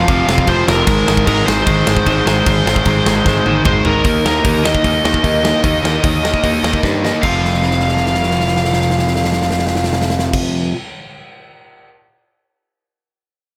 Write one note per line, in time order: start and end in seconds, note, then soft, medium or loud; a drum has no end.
0.00 0.51 F5 loud
0.08 0.23 F1 medium
0.08 0.26 F2 medium
0.08 0.27 C3 medium
0.08 0.27 F3 loud
0.08 kick loud
0.08 crash medium
0.27 0.43 F1 medium
0.27 0.45 F2 medium
0.27 0.46 C3 medium
0.27 0.46 F3 loud
0.27 snare loud
0.38 kick medium
0.47 0.62 F1 loud
0.47 0.65 F2 loud
0.47 0.66 C3 loud
0.47 0.67 F3 loud
0.47 0.67 C5 loud
0.47 kick medium
0.47 crash medium
0.66 0.82 F1 medium
0.66 0.86 F2 loud
0.66 0.86 C3 loud
0.66 0.86 F3 loud
0.66 1.26 A#4 medium
0.66 snare loud
0.86 1.02 G#1 medium
0.86 1.06 G#2 loud
0.86 1.06 D#3 loud
0.86 1.07 G#3 loud
0.86 kick loud
0.86 crash medium
1.07 1.22 G#1 medium
1.07 1.25 G#2 medium
1.07 1.25 D#3 medium
1.07 1.26 G#3 loud
1.07 snare loud
1.17 kick medium
1.26 1.41 G#1 medium
1.26 1.45 G#2 medium
1.26 1.45 D#3 medium
1.26 1.47 G#3 loud
1.26 1.46 A#4 medium
1.26 kick loud
1.26 crash medium
1.46 1.62 G#1 medium
1.46 1.64 G#2 loud
1.46 1.65 D#3 loud
1.46 1.66 G#3 loud
1.46 3.61 C5 medium
1.46 snare loud
1.66 1.81 G#1 medium
1.66 1.85 G#2 loud
1.66 1.85 D#3 loud
1.66 1.86 G#3 loud
1.66 kick loud
1.66 crash medium
1.86 2.01 G#1 medium
1.86 2.05 G#2 medium
1.86 2.06 D#3 loud
1.86 2.06 G#3 loud
1.86 snare loud
1.97 kick medium
2.06 2.21 G#1 loud
2.06 2.25 G#2 loud
2.06 2.26 D#3 loud
2.06 2.27 G#3 loud
2.06 kick medium
2.06 crash medium
2.26 2.40 G#1 medium
2.26 2.44 G#2 medium
2.26 2.45 D#3 medium
2.26 2.45 G#3 loud
2.26 snare loud
2.46 2.60 G#1 loud
2.46 2.65 G#2 medium
2.46 2.66 D#3 loud
2.46 2.66 G#3 loud
2.46 kick loud
2.46 crash medium
2.66 2.80 G#1 medium
2.66 2.86 G#2 medium
2.66 2.86 D#3 loud
2.66 2.87 G#3 loud
2.66 snare loud
2.76 kick loud
2.85 3.00 G#1 medium
2.85 3.05 G#2 medium
2.85 3.06 D#3 medium
2.85 3.06 G#3 medium
2.85 kick loud
2.85 crash medium
3.06 3.20 G#1 loud
3.06 3.24 G#2 loud
3.06 3.25 D#3 loud
3.06 3.25 G#3 loud
3.06 snare loud
3.25 3.40 G#1 medium
3.25 3.44 G#2 medium
3.25 3.44 D#3 medium
3.25 3.44 G#3 medium
3.25 kick loud
3.25 snare medium
3.45 3.60 G#1 medium
3.45 3.64 G#2 medium
3.45 3.64 D#3 medium
3.45 3.64 G#3 medium
3.45 high tom medium
3.65 3.80 G#1 loud
3.65 3.84 G#2 loud
3.65 3.84 D#3 loud
3.65 3.85 G#3 loud
3.65 3.85 C5 loud
3.65 kick loud
3.65 mid tom loud
3.85 4.00 G#1 medium
3.85 4.04 G#2 medium
3.85 4.04 D#3 medium
3.85 4.04 G#3 loud
3.85 4.25 A#4 loud
3.85 floor tom loud
4.04 4.18 D#2 medium
4.04 4.24 D#3 loud
4.04 4.25 A#3 loud
4.04 4.25 D#4 loud
4.04 kick loud
4.04 open hi-hat medium
4.25 4.39 D#2 medium
4.25 4.44 D#3 medium
4.25 4.44 A#3 medium
4.25 4.44 D#4 medium
4.25 4.66 A#4 medium
4.25 snare loud
4.44 4.72 D#2 medium
4.44 4.63 D#3 medium
4.44 4.63 A#3 loud
4.44 4.64 D#4 loud
4.44 kick loud
4.44 open hi-hat medium
4.63 4.82 D#3 medium
4.63 4.83 A#3 medium
4.63 4.83 D#4 loud
4.63 6.80 D#5 loud
4.63 snare loud
4.75 kick loud
4.83 4.98 D#2 medium
4.83 5.03 D#3 medium
4.83 5.03 A#3 medium
4.83 5.04 D#4 medium
4.83 kick loud
4.83 open hi-hat medium
5.04 5.18 D#2 medium
5.04 5.22 D#3 medium
5.04 5.22 A#3 loud
5.04 5.23 D#4 loud
5.04 snare loud
5.14 kick medium
5.23 5.52 D#2 medium
5.23 5.43 D#3 loud
5.23 5.43 A#3 medium
5.23 5.43 D#4 loud
5.23 kick medium
5.23 open hi-hat medium
5.44 5.62 D#3 medium
5.44 5.63 A#3 loud
5.44 5.63 D#4 medium
5.44 snare loud
5.64 5.78 D#2 medium
5.64 5.82 D#3 medium
5.64 5.83 A#3 medium
5.64 5.83 D#4 loud
5.64 kick loud
5.64 open hi-hat medium
5.83 5.97 D#2 medium
5.83 6.02 D#3 medium
5.83 6.02 A#3 medium
5.83 6.03 D#4 medium
5.83 snare loud
6.03 6.31 D#2 medium
6.03 6.22 D#3 medium
6.03 6.23 A#3 loud
6.03 6.23 D#4 loud
6.03 kick loud
6.03 open hi-hat medium
6.23 6.42 D#3 medium
6.23 6.43 A#3 medium
6.23 6.43 D#4 medium
6.23 snare loud
6.34 kick medium
6.44 6.58 D#2 medium
6.44 6.62 D#3 medium
6.44 6.63 A#3 medium
6.44 6.63 D#4 medium
6.44 kick loud
6.44 open hi-hat medium
6.63 6.77 D#2 medium
6.63 6.83 D#3 medium
6.63 6.83 A#3 medium
6.63 6.84 D#4 loud
6.63 snare loud
6.73 kick medium
6.83 7.11 G2 medium
6.83 7.02 D#3 medium
6.83 7.03 A#3 medium
6.83 7.03 D#4 medium
6.83 kick medium
6.83 snare medium
7.04 7.22 D#3 medium
7.04 7.23 A#3 medium
7.04 7.23 D#4 medium
7.04 snare medium
7.22 10.37 F1 medium
7.22 10.72 F2 medium
7.22 10.74 C3 loud
7.22 10.37 F5 medium
7.22 kick loud
7.22 crash medium
7.26 10.76 F3 loud
7.45 snare soft
7.54 snare soft
7.62 snare soft
7.71 snare medium
7.80 snare soft
7.88 snare medium
7.97 snare medium
8.06 snare medium
8.14 snare medium
8.23 snare medium
8.31 snare medium
8.40 snare medium
8.47 snare medium
8.56 snare medium
8.65 snare medium
8.73 snare medium
8.81 snare medium
8.90 snare medium
8.99 snare medium
9.07 snare medium
9.16 snare medium
9.24 snare medium
9.32 snare medium
9.41 snare medium
9.51 snare medium
9.59 snare medium
9.67 snare medium
9.75 snare medium
9.84 snare medium
9.93 snare medium
10.02 snare medium
10.10 snare medium
10.19 snare medium
10.33 kick loud
10.33 crash medium